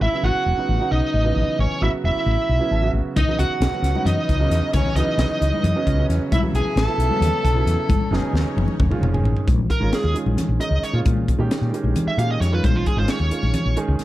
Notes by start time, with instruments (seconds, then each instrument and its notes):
0.01 fretless electric bass A1, tenor saxophone E4, lead electric guitar E5
0.12 grand piano C#3 F#3 B3 E4, muted fretless electric bass stroke
0.23 fretless electric bass A1, tenor saxophone F#4, lead electric guitar F#5
0.46 fretless electric bass E1
0.57 grand piano C#3 F#3 B3 D#4
0.69 fretless electric bass A1
0.79 grand piano C#3 F#3 B3 D#4
0.91 fretless electric bass B1, tenor saxophone D#4, lead electric guitar D#5
1.14 fretless electric bass A1
1.24 grand piano C#3 E3 F#3 B3
1.36 fretless electric bass A1
1.47 muted fretless electric bass stroke
1.59 fretless electric bass A1, tenor saxophone C#4, lead electric guitar C#5
1.71 muted fretless electric bass stroke
1.81 fretless electric bass A1, grand piano C#3 F#3 B3 F#4, tenor saxophone E4, lead electric guitar E5
1.93 muted fretless electric bass stroke
2.04 fretless electric bass E1, tenor saxophone E4, lead electric guitar E5
2.26 fretless electric bass A1
2.49 fretless electric bass B1
2.59 grand piano C#3 F#3 B3 E4
2.71 fretless electric bass A1, grand piano A5
2.82 grand piano C#3 F#3 B3 F#4
2.93 fretless electric bass A1, grand piano E5
3.05 muted fretless electric bass stroke
3.16 fretless electric bass C#2, string section E3 F#3 C#4 B4 D#5, tenor saxophone D#4, lead electric guitar D#5, kick, closed hi-hat, high conga
3.28 grand piano C#3 F#3 B3 D#4, muted fretless electric bass stroke, low conga
3.39 fretless electric bass C#2, tenor saxophone F#4, lead electric guitar F#5, closed hi-hat, low conga
3.49 muted fretless electric bass stroke
3.60 fretless electric bass B1, snare, closed hi-hat
3.73 grand piano C#3 F#3 B3 C#4, low conga
3.82 fretless electric bass C#2, snare, closed hi-hat
3.94 grand piano C#3 F#3 B3 D#4, high conga
4.05 fretless electric bass F#2, tenor saxophone D#4, lead electric guitar D#5, closed hi-hat, low conga
4.29 fretless electric bass C#2, kick, closed hi-hat
4.40 grand piano C#3 F#3 B3 D#4
4.50 fretless electric bass E2, snare, closed hi-hat
4.61 muted fretless electric bass stroke, low conga
4.74 fretless electric bass C#2, tenor saxophone C#4, lead electric guitar C#5, kick, closed hi-hat, high conga
4.86 low conga
4.95 fretless electric bass C#2, grand piano C#3 E3 F#3 B3, tenor saxophone D#4, lead electric guitar D#5, closed hi-hat, low conga
5.07 muted fretless electric bass stroke
5.18 fretless electric bass B1, tenor saxophone D#4, lead electric guitar D#5, snare, closed hi-hat
5.30 low conga
5.41 fretless electric bass C#2, closed hi-hat
5.54 high conga
5.63 fretless electric bass F#2, closed hi-hat, low conga
5.75 grand piano C#3 F#3 B3 C#4
5.87 fretless electric bass C#2, kick, closed hi-hat, low conga
5.98 grand piano C#3 F#3 B3 C#4
6.09 fretless electric bass E2, snare, closed hi-hat
6.20 muted fretless electric bass stroke, low conga
6.32 fretless electric bass B1, string section B3 A4 E5, tenor saxophone E4, lead electric guitar E5, kick, closed hi-hat, high conga
6.42 grand piano C#3 F#3 B3 E4, low conga
6.53 fretless electric bass B1, tenor saxophone G#4, lead electric guitar G#5, closed hi-hat, low conga
6.65 muted fretless electric bass stroke
6.76 fretless electric bass A1, tenor saxophone A4, lead electric guitar A5, snare, closed hi-hat
6.87 grand piano C#3 F#3 B3 E4, low conga
6.98 fretless electric bass B1, closed hi-hat
7.09 grand piano C#3 F#3 B3 C#4, high conga
7.20 fretless electric bass D#2, closed hi-hat, low conga
7.44 fretless electric bass B1, kick, snare, closed hi-hat, low conga
7.54 grand piano C#3 F#3 B3 E4
7.66 fretless electric bass E2, snare, closed hi-hat
7.77 muted fretless electric bass stroke, low conga
7.89 fretless electric bass F#1, string section C#4 D#4 C#5, kick, closed hi-hat, high conga
8.01 low conga
8.11 fretless electric bass F#1, grand piano C#3 F#3 B3 D#4, snare
8.18 tenor saxophone G#4, lead electric guitar G#5
8.23 muted fretless electric bass stroke
8.33 fretless electric bass D#2, snare
8.45 muted fretless electric bass stroke
8.57 fretless electric bass F#1, high tom
8.68 high conga
8.80 fretless electric bass F1, string section F3, kick, mid tom, low conga
8.90 grand piano D#3 G#3 C#4 F4, mid tom
9.01 fretless electric bass F1, mid tom
9.12 grand piano D#3 G#3 C#4 G#4, floor tom
9.23 fretless electric bass A1, floor tom
9.35 muted fretless electric bass stroke, floor tom, low conga
9.47 fretless electric bass A#1, kick, closed hi-hat, high conga
9.59 low conga
9.70 lead electric guitar A#4, kick, closed hi-hat
9.80 fretless electric bass G#1, grand piano D#3 G#3 C#4 F4
9.93 lead electric guitar G#4, snare, closed hi-hat
10.04 fretless electric bass D#2
10.14 grand piano D#3 G#3 C#4 F4, closed hi-hat
10.26 fretless electric bass A#1, high conga
10.37 snare, closed hi-hat, low conga
10.49 fretless electric bass A#1, low conga
10.59 grand piano D#3 G#3 C#4 D#4, lead electric guitar D#5, closed hi-hat
10.71 fretless electric bass C#2
10.82 lead electric guitar C#5, muted fretless electric bass stroke, closed hi-hat
10.93 fretless electric bass A#2, grand piano D#3 G#3 C#4 F4
11.05 fretless electric bass A#2, kick, closed hi-hat, high conga
11.17 low conga
11.28 kick, closed hi-hat
11.38 fretless electric bass A#2, grand piano D#3 G#3 C#4 G4
11.51 snare, closed hi-hat
11.62 fretless electric bass A#2
11.73 grand piano D#3 G#3 C#4 G4, closed hi-hat, low conga
11.84 fretless electric bass A#1, high conga
11.96 closed hi-hat, low conga
12.07 lead electric guitar E5, muted fretless electric bass stroke, low conga
12.17 fretless electric bass A#2, grand piano D#3 G#3 C#4 G4, lead electric guitar F5, closed hi-hat
12.31 lead electric guitar D#5
12.40 fretless electric bass F2, lead electric guitar C#5, snare, closed hi-hat
12.52 grand piano D#3 G#3 C#4 F4, lead electric guitar B4
12.64 fretless electric bass A#1, lead electric guitar C5, kick, closed hi-hat, high conga
12.76 lead electric guitar F4, low conga
12.86 lead electric guitar G#4, kick, closed hi-hat
12.96 fretless electric bass G#1, grand piano D#3 G#3 C#4 F4, lead electric guitar C5
13.08 lead electric guitar C#5, snare, closed hi-hat
13.20 fretless electric bass D#2
13.31 grand piano D#3 G#3 C#4 F4, muted fretless electric bass stroke, closed hi-hat, low conga
13.43 fretless electric bass A#1, high conga
13.54 closed hi-hat, low conga
13.66 fretless electric bass A#1, low conga
13.77 grand piano D#3 G#3 C#4 G#4, closed hi-hat
13.88 fretless electric bass C#2
13.99 snare, closed hi-hat